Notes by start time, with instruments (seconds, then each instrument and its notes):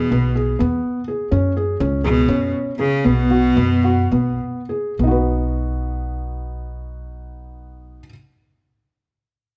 Already playing: cello B2
0.11 upright bass B1, felt piano B3
0.35 felt piano G#4
0.59 upright bass E2, felt piano B3
1.08 felt piano G#4
1.31 upright bass F#2, felt piano C#4
1.57 felt piano G#4
1.80 upright bass C#2, felt piano C#4
2.04 cello B2, felt piano G#4
2.28 upright bass F#2, felt piano C#4
2.79 cello C#3, felt piano G#4
3.04 upright bass B1, cello B2, felt piano B3
3.31 felt piano F#4
3.57 upright bass F#2, felt piano B3
3.84 felt piano F#4
4.11 upright bass B1, felt piano B3
4.69 felt piano G#4
4.99 upright bass B1, felt piano B3
5.03 felt piano D#4 F#4
5.11 felt piano B4